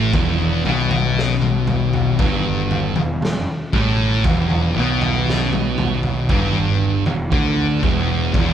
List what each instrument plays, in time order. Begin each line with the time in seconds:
Already playing: picked electric bass A1, distorted electric guitar A2
0.13 picked electric bass E1, distorted electric guitar E2, kick, floor tom
0.65 picked electric bass B1, distorted electric guitar B2, floor tom
0.91 floor tom
1.19 snare
1.42 mid tom
1.67 floor tom, mid tom
1.93 floor tom
2.19 picked electric bass G1, distorted electric guitar G2, kick, floor tom
2.71 floor tom
2.96 picked electric bass E1, distorted electric guitar E2, floor tom
3.22 snare, mid tom
3.73 picked electric bass A1, distorted electric guitar A2, kick, mid tom
4.24 picked electric bass E1, distorted electric guitar E2, kick, floor tom
4.50 floor tom
4.76 picked electric bass B1, distorted electric guitar B2
5.02 floor tom
5.30 snare
5.53 mid tom
5.78 floor tom, mid tom
6.03 floor tom
6.29 picked electric bass G1, distorted electric guitar G2, kick, floor tom
7.06 picked electric bass E1, distorted electric guitar E2, floor tom
7.32 picked electric bass D2, distorted electric guitar D3, kick
7.83 picked electric bass E1, distorted electric guitar E2, kick, mid tom
8.34 picked electric bass E1, distorted electric guitar E2, kick, floor tom